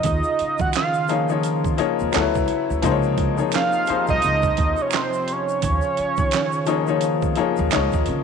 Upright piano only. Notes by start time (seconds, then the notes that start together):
1.09 F3 A#3 D#4 G#4 C#5
1.29 F3 A#3 D#4 G#4 C#5
1.77 F3 A#3 D#4 G#4 C#5
2.12 F#3 B3 E4 A4 B4
2.22 C#5
2.82 F3 A#3 D#4 G#4 C5
2.91 C#5
3.37 F3 A#3 D#4 G#4 C#5
3.88 F3 A#3 D#4 G#4 C5
6.66 F3 A#3 D#4 G#4 C#5
6.87 F3 A#3 D#4 G#4 C#5
7.36 F3 A#3 D#4 G#4 C#5
7.72 F3 A#3 D#4 G#4 C#5